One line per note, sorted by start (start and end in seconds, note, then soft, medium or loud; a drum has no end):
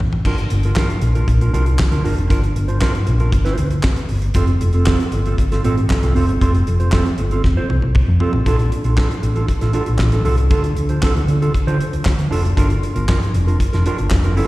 0.00 0.26 A1 medium
0.00 mid tom medium
0.13 muted clean electric guitar stroke soft
0.13 floor tom medium
0.25 0.46 G1 loud
0.25 0.40 D4 medium
0.25 0.38 F4 medium
0.25 0.37 A#4 medium
0.25 kick medium
0.25 crash medium
0.38 muted clean electric guitar stroke soft
0.38 closed hi-hat soft
0.50 0.72 G1 medium
0.50 muted clean electric guitar stroke soft
0.50 closed hi-hat medium
0.63 0.76 D4 soft
0.63 0.76 F4 soft
0.63 0.76 A#4 medium
0.63 closed hi-hat soft
0.76 0.91 D4 medium
0.76 0.90 F4 medium
0.76 0.89 A#4 medium
0.76 kick loud
0.76 snare loud
0.76 clap medium
0.90 muted clean electric guitar stroke soft
0.90 closed hi-hat soft
1.01 1.23 A#1 medium
1.01 muted clean electric guitar stroke soft
1.01 closed hi-hat medium
1.15 1.27 D4 soft
1.15 1.27 F4 soft
1.15 1.26 A#4 medium
1.15 closed hi-hat soft
1.28 1.49 A#1 medium
1.28 muted clean electric guitar stroke soft
1.28 kick medium
1.28 closed hi-hat medium
1.41 1.52 D4 soft
1.41 1.53 F4 medium
1.41 1.52 A#4 medium
1.41 closed hi-hat soft
1.53 1.74 C2 medium
1.53 1.68 D4 medium
1.53 1.67 F4 medium
1.53 1.66 A#4 medium
1.53 closed hi-hat medium
1.66 muted clean electric guitar stroke soft
1.66 closed hi-hat soft
1.79 muted clean electric guitar stroke soft
1.79 kick loud
1.79 snare loud
1.79 clap medium
1.91 2.02 D2 medium
1.91 2.03 D4 medium
1.91 2.03 F4 medium
1.91 2.03 A#4 medium
1.91 closed hi-hat soft
2.04 2.15 G1 medium
2.04 2.19 D4 medium
2.04 2.17 F4 medium
2.04 2.16 A#4 medium
2.04 open hi-hat medium
2.17 2.28 F1 medium
2.17 muted clean electric guitar stroke soft
2.17 closed hi-hat soft
2.29 2.51 G1 medium
2.29 2.44 D4 medium
2.29 2.42 F4 medium
2.29 2.41 A#4 medium
2.29 kick loud
2.29 closed hi-hat medium
2.42 muted clean electric guitar stroke soft
2.42 closed hi-hat soft
2.56 2.87 G1 medium
2.56 muted clean electric guitar stroke soft
2.56 closed hi-hat medium
2.68 2.80 D4 soft
2.68 2.80 F4 soft
2.68 2.80 C5 medium
2.68 closed hi-hat soft
2.81 2.96 D4 medium
2.81 2.94 F4 medium
2.81 2.93 A#4 loud
2.81 kick loud
2.81 snare loud
2.81 clap medium
2.95 muted clean electric guitar stroke soft
2.95 closed hi-hat soft
3.07 3.28 A#1 medium
3.07 muted clean electric guitar stroke soft
3.07 closed hi-hat medium
3.20 3.32 D4 medium
3.20 3.32 F4 medium
3.20 3.32 A#4 medium
3.20 closed hi-hat soft
3.32 3.53 G1 medium
3.32 muted clean electric guitar stroke soft
3.32 kick loud
3.32 closed hi-hat medium
3.45 3.57 D4 medium
3.45 3.58 F4 medium
3.45 3.58 C5 medium
3.45 snare soft
3.45 closed hi-hat soft
3.58 3.79 D2 medium
3.58 muted clean electric guitar stroke soft
3.58 closed hi-hat medium
3.71 muted clean electric guitar stroke medium
3.71 closed hi-hat soft
3.82 muted clean electric guitar stroke soft
3.82 kick loud
3.82 snare loud
3.82 clap medium
3.96 muted clean electric guitar stroke soft
3.96 closed hi-hat soft
4.09 4.31 G1 medium
4.09 open hi-hat medium
4.22 muted clean electric guitar stroke soft
4.22 closed hi-hat soft
4.34 4.56 F1 medium
4.34 4.50 C4 medium
4.34 4.47 F4 medium
4.34 4.46 A4 medium
4.34 kick loud
4.34 closed hi-hat medium
4.47 muted clean electric guitar stroke soft
4.47 closed hi-hat soft
4.61 4.92 F1 medium
4.61 muted clean electric guitar stroke soft
4.61 closed hi-hat medium
4.73 4.85 C4 soft
4.73 4.86 F4 soft
4.73 4.85 A4 soft
4.73 closed hi-hat soft
4.86 5.01 C4 medium
4.86 5.00 F4 medium
4.86 4.99 A4 medium
4.86 kick loud
4.86 snare loud
4.86 clap medium
5.00 muted clean electric guitar stroke soft
5.00 closed hi-hat soft
5.12 5.34 G1 medium
5.12 muted clean electric guitar stroke soft
5.12 closed hi-hat medium
5.26 5.37 C4 soft
5.26 5.38 F4 soft
5.26 5.37 A4 medium
5.26 closed hi-hat soft
5.38 5.59 G1 medium
5.38 muted clean electric guitar stroke soft
5.38 kick medium
5.38 closed hi-hat medium
5.52 5.63 C4 soft
5.52 5.63 F4 medium
5.52 5.63 A4 medium
5.52 snare soft
5.52 closed hi-hat medium
5.64 5.85 A1 medium
5.64 5.79 C4 medium
5.64 5.77 F4 medium
5.64 5.77 A4 loud
5.64 closed hi-hat medium
5.78 muted clean electric guitar stroke medium
5.78 closed hi-hat soft
5.89 muted clean electric guitar stroke soft
5.89 kick loud
5.89 snare loud
5.89 clap medium
6.03 6.13 C2 medium
6.03 6.14 C4 soft
6.03 6.15 F4 soft
6.03 6.14 A4 medium
6.03 closed hi-hat soft
6.15 6.28 F1 medium
6.15 6.30 C4 medium
6.15 6.27 F4 medium
6.15 6.26 A4 medium
6.15 open hi-hat medium
6.28 6.39 G1 medium
6.28 muted clean electric guitar stroke soft
6.28 closed hi-hat soft
6.41 6.62 F1 loud
6.41 6.56 C4 medium
6.41 6.54 F4 medium
6.41 6.53 A4 medium
6.41 kick loud
6.41 closed hi-hat medium
6.54 muted clean electric guitar stroke medium
6.54 closed hi-hat soft
6.67 6.98 F1 medium
6.67 muted clean electric guitar stroke soft
6.67 closed hi-hat medium
6.80 6.92 C4 soft
6.80 6.91 F4 soft
6.80 6.91 C5 medium
6.80 closed hi-hat soft
6.92 7.07 C4 medium
6.92 7.06 F4 medium
6.92 7.05 A4 medium
6.92 kick loud
6.92 snare loud
6.92 clap medium
7.06 muted clean electric guitar stroke soft
7.06 closed hi-hat soft
7.18 7.40 G1 medium
7.18 muted clean electric guitar stroke soft
7.18 closed hi-hat medium
7.31 7.43 C4 soft
7.31 7.43 F4 medium
7.31 7.43 A4 medium
7.31 closed hi-hat soft
7.44 7.55 F1 medium
7.44 muted clean electric guitar stroke soft
7.44 kick medium
7.44 snare soft
7.57 7.69 C4 medium
7.57 7.70 F4 medium
7.57 7.71 C5 medium
7.70 7.81 C2 medium
7.70 muted clean electric guitar stroke soft
7.70 high tom medium
7.82 7.93 C2 medium
7.82 muted clean electric guitar stroke medium
7.82 high tom medium
7.95 kick loud
7.95 mid tom medium
8.08 8.18 F2 medium
8.08 muted clean electric guitar stroke soft
8.20 8.35 C4 medium
8.20 8.34 F4 medium
8.20 8.33 A4 medium
8.20 floor tom medium
8.33 8.44 A1 medium
8.33 muted clean electric guitar stroke soft
8.33 floor tom medium
8.46 8.67 A#1 medium
8.46 8.61 D4 medium
8.46 8.59 F4 medium
8.46 8.57 A4 medium
8.46 kick loud
8.46 closed hi-hat medium
8.59 muted clean electric guitar stroke medium
8.59 closed hi-hat soft
8.72 muted clean electric guitar stroke soft
8.72 closed hi-hat medium
8.84 8.95 A#1 medium
8.84 8.96 D4 soft
8.84 8.96 F4 soft
8.84 8.96 A4 soft
8.84 closed hi-hat soft
8.97 9.12 D4 medium
8.97 9.09 F4 medium
8.97 9.09 A4 medium
8.97 kick loud
8.97 snare loud
8.97 clap medium
9.10 muted clean electric guitar stroke soft
9.10 closed hi-hat soft
9.22 9.44 A1 medium
9.22 muted clean electric guitar stroke soft
9.22 closed hi-hat medium
9.35 9.47 D4 medium
9.35 9.47 F4 medium
9.35 9.47 A4 medium
9.35 closed hi-hat soft
9.48 muted clean electric guitar stroke soft
9.48 kick medium
9.48 closed hi-hat medium
9.61 9.72 A1 medium
9.61 9.72 D4 soft
9.61 9.73 F4 medium
9.61 9.73 A4 medium
9.61 snare soft
9.61 closed hi-hat medium
9.73 9.89 D4 medium
9.73 9.86 F4 medium
9.73 9.85 A4 medium
9.73 closed hi-hat medium
9.86 9.98 A#1 medium
9.86 muted clean electric guitar stroke soft
9.86 closed hi-hat soft
9.98 10.21 A1 medium
9.98 muted clean electric guitar stroke medium
9.98 kick loud
9.98 snare loud
9.98 clap medium
10.12 10.23 D4 soft
10.12 10.24 F4 medium
10.12 10.24 A4 medium
10.12 closed hi-hat soft
10.25 10.47 C2 medium
10.25 10.40 D4 medium
10.25 10.37 F4 medium
10.25 10.37 A4 medium
10.25 open hi-hat medium
10.38 muted clean electric guitar stroke soft
10.38 closed hi-hat soft
10.51 10.72 D2 loud
10.51 10.66 D4 medium
10.51 10.64 F4 medium
10.51 10.63 A4 medium
10.51 kick loud
10.51 closed hi-hat medium
10.64 muted clean electric guitar stroke soft
10.64 closed hi-hat soft
10.76 10.99 D2 loud
10.76 muted clean electric guitar stroke soft
10.76 closed hi-hat medium
10.89 11.02 D4 soft
10.89 11.02 F4 soft
10.89 11.01 C5 soft
10.89 closed hi-hat soft
11.02 11.18 D4 medium
11.02 11.16 F4 medium
11.02 11.15 A4 loud
11.02 kick loud
11.02 snare loud
11.02 clap medium
11.16 11.27 D2 medium
11.16 muted clean electric guitar stroke soft
11.16 closed hi-hat soft
11.28 11.49 D3 medium
11.28 muted clean electric guitar stroke soft
11.28 closed hi-hat medium
11.42 11.53 D4 medium
11.42 11.54 F4 medium
11.42 11.53 A4 medium
11.42 closed hi-hat soft
11.54 muted clean electric guitar stroke soft
11.54 muted fingered electric bass stroke soft
11.54 kick medium
11.54 closed hi-hat medium
11.67 11.78 D3 medium
11.67 11.79 D4 medium
11.67 11.79 F4 medium
11.67 11.80 C5 medium
11.67 closed hi-hat soft
11.80 muted clean electric guitar stroke soft
11.80 closed hi-hat medium
11.93 12.04 D2 medium
11.93 muted clean electric guitar stroke soft
11.93 closed hi-hat soft
12.05 12.27 D2 medium
12.05 muted clean electric guitar stroke soft
12.05 kick loud
12.05 snare loud
12.05 clap loud
12.19 muted clean electric guitar stroke soft
12.19 closed hi-hat soft
12.31 12.53 F1 medium
12.31 12.46 D4 medium
12.31 12.44 F4 medium
12.31 12.44 A4 medium
12.31 open hi-hat medium
12.45 muted clean electric guitar stroke medium
12.45 closed hi-hat soft
12.57 12.78 G1 loud
12.57 12.72 D4 medium
12.57 12.70 F4 medium
12.57 12.69 A#4 medium
12.57 kick loud
12.57 closed hi-hat medium
12.70 muted clean electric guitar stroke soft
12.70 closed hi-hat soft
12.83 muted clean electric guitar stroke soft
12.83 closed hi-hat medium
12.95 13.06 G1 loud
12.95 13.07 D4 soft
12.95 13.07 F4 soft
12.95 13.07 A#4 soft
12.95 closed hi-hat soft
13.08 13.23 D4 medium
13.08 13.21 F4 medium
13.08 13.20 A#4 loud
13.08 kick loud
13.08 snare loud
13.08 clap medium
13.21 muted clean electric guitar stroke soft
13.21 closed hi-hat soft
13.34 13.54 F1 medium
13.34 muted clean electric guitar stroke soft
13.34 closed hi-hat medium
13.47 13.59 D4 medium
13.47 13.59 F4 medium
13.47 13.58 A#4 medium
13.47 closed hi-hat soft
13.60 muted clean electric guitar stroke soft
13.60 kick medium
13.60 closed hi-hat medium
13.73 13.84 F1 medium
13.73 13.85 D4 medium
13.73 13.85 F4 medium
13.73 13.84 A#4 medium
13.73 snare soft
13.73 closed hi-hat soft
13.86 14.00 D4 medium
13.86 13.99 F4 medium
13.86 13.98 A#4 medium
13.86 closed hi-hat medium
13.98 14.09 G1 medium
13.98 muted clean electric guitar stroke soft
13.98 closed hi-hat soft
14.10 14.38 F1 medium
14.10 muted clean electric guitar stroke soft
14.10 kick loud
14.10 snare loud
14.10 clap loud
14.24 14.35 D4 soft
14.24 14.36 F4 medium
14.24 14.36 A#4 medium
14.24 closed hi-hat soft
14.37 14.47 G1 medium
14.37 14.47 D4 medium
14.37 14.47 F4 medium
14.37 14.47 A#4 medium
14.37 open hi-hat medium